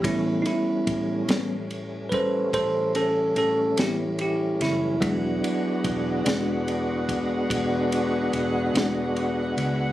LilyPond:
<<
  \new Staff \with { instrumentName = "Saxophone section" } { \time 12/8 \key e \dorian \tempo 4. = 48 << { r1. | <gis' fis''>1. | } \\ { r1. | d''2. e''2. | } >> }
  \new Staff \with { instrumentName = "Tine electric piano" } { \time 12/8 \key e \dorian e'8 <dis' e'>4 r4 <a' b' c''>8 <a' c''>8 <cis' a'>8 <cis' a'>8 <e' g'>8 <e' g'>8 e'8~ | e'2~ e'8 r2. r8 | }
  \new Staff \with { instrumentName = "Tine electric piano" } { \time 12/8 \key e \dorian <g b cis'>4. r4 <g cis' b'>8 r2. | <fis gis d'>4. r1 r8 | }
  \new Staff \with { instrumentName = "Tonewheel organ" } { \time 12/8 \key e \dorian <e g a cis'>1. | <gis b d' fis'>1. | }
  \new Staff \with { instrumentName = "Clean electric guitar" } { \time 12/8 \key e \dorian r4. <a, g b cis'>8 r2 r8 <a, g b cis'>8 r4 | <e gis d' fis'>8 r4 <e gis d' fis'>8 r2 r8 <e gis d' fis'>8 r4 | }
  \new Staff \with { instrumentName = "Fingered electric bass" } { \clef bass \time 12/8 \key e \dorian a,,8 r8 a,,8 a,,4. a,,4 a,,8 a,,4 fis,,8 | e,,8 r8 e,,8 e,,4. e,,4 e,,8 e,,4 cis,8 | }
  \new DrumStaff \with { instrumentName = "Drums" } \drummode { \time 12/8 <bd cymr>8 cymr8 <bd cymr>8 <cymr sn>8 cymr8 <bd cymr>8 <bd cymr>8 cymr8 cymr8 <cymr sn>8 cymr8 <cymr sn>8 | <bd cymr>8 cymr8 <bd cymr>8 <cymr sn>8 cymr8 <bd cymr>8 <bd cymr>8 cymr8 cymr8 <cymr sn>8 cymr8 cymr8 | }
>>